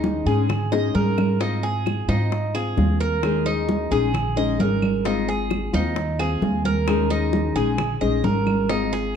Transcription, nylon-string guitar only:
Already playing: D#3 G#3 C#4 D#4 G#4
0.26 G#3 C#4 D#4 G#4
0.49 muted nylon-string guitar stroke
0.72 G#3 C#4 D#4 G#4
0.94 G#3 C#4 D#4 G#4
1.40 G#3 C4 F4
2.08 C4 F4
2.32 muted nylon-string guitar stroke
2.54 C4 F4
2.77 G#3 C4 F4
3.23 D#3 G#3 C#4 D#4 G#4
3.91 G#3 C#4 D#4 G#4
4.14 muted nylon-string guitar stroke
4.36 G#3 C#4 D#4 G#4
4.59 G#3 C#4 D#4 G#4
5.05 G#3 C4 F4
5.73 C4 F4
5.97 muted nylon-string guitar stroke
6.19 C4 F4
6.42 G#3 C4 F4
6.88 D#3 G#3 C#4 D#4 G#4
7.56 G#3 C#4 D#4 G#4
7.78 muted nylon-string guitar stroke
8.01 G#3 C#4 D#4 G#4
8.24 G#3 C#4 D#4 G#4
8.69 G#3 C4 F4

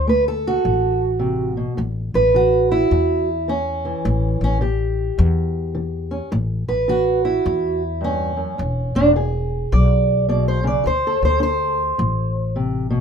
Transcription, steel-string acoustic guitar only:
0.07 A3 B4
0.28 A4
0.47 F#4
0.64 A2
1.19 C3
1.57 B2
1.77 A2
2.15 B4
2.34 E3 F#4
2.72 E4
2.92 E2
3.48 E3 C#4
3.85 E3
4.05 A2
4.44 C#4
4.61 E3 G4
5.18 E2
5.75 E3
6.11 C#4
6.32 A2
6.69 B4
6.88 E3 F#4
7.25 E4
7.46 E2
8.01 G2 C#4
8.36 F#2
8.58 E2
8.96 D4
9.16 E3 G#4
9.72 E2 D5
10.29 B2 D5
10.48 C5
10.64 C#3 D5
10.84 D3 C5
11.07 A4
11.25 C5
11.40 D4 C5
11.98 A2
12.56 C3
12.90 B2

